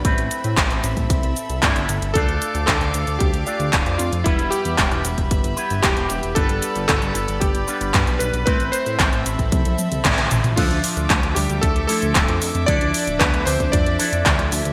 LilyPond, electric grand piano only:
\new Staff \with { instrumentName = "Electric grand piano" } { \time 4/4 \key d \dorian \tempo 4 = 114 r1 | a'4 a'4 g'4 r8 f'8 | e'8 g'4 r4. g'4 | a'4 a'4 g'4 r8 b'8 |
b'8 c''4 r2 r8 | <f f'>4. <g g'>8 <a a'>8 <a a'>4. | <d' d''>4 <b b'>8 <c' c''>8 <d' d''>4. r8 | }